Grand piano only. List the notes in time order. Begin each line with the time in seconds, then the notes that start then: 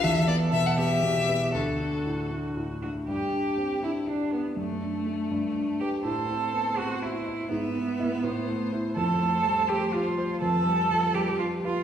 0.04 E2
0.28 B3
0.53 B2
0.78 B3
1.03 B2
1.29 B3
1.54 D2
1.80 D4
2.06 A2
2.31 D4
2.57 A2
2.82 D4
3.08 G2
3.33 D4
3.57 C4
3.82 D4
4.08 G4
4.32 B4
4.57 F#2
4.82 D4
5.06 D4 A4
5.31 G2
5.56 D4
5.81 G4 B4
6.05 A2
6.30 C4
6.54 B3
6.78 C4
7.02 E4
7.26 E5
7.51 G#2
7.76 B3
8.00 E4 E5
8.24 A2
8.48 A3
8.72 E4 C5
8.97 F2
9.21 A3
9.45 G3
9.69 A3
9.93 F4
10.18 C5
10.42 F2
10.66 G3
10.91 F3
11.15 G3
11.40 G4
11.64 B4